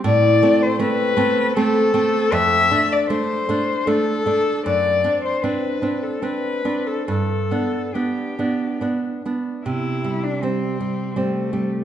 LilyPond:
<<
  \new Staff \with { instrumentName = "Cello" } { \time 3/4 \key c \major \tempo 4 = 77 d''8. c''16 b'4 a'4 | e''8. d''16 c''4 a'4 | d''8. c''16 b'8. a'16 b'8. a'16 | a'4 g'4 r4 |
e'8. d'16 c'4 a4 | }
  \new Staff \with { instrumentName = "Nylon-string guitar" } { \time 3/4 \key c \major a,8 <a c'>8 <a c'>8 <a c'>8 <a c'>8 <a c'>8 | f,8 <a d'>8 <a d'>8 <a d'>8 <a d'>8 <a d'>8 | fis,8 <c' d'>8 <c' d'>8 <c' d'>8 <c' d'>8 <c' d'>8 | g,8 <b d'>8 <b d'>8 <b d'>8 <b d'>8 <b d'>8 |
c8 g8 <g c'>8 g8 <g c'>8 g8 | }
>>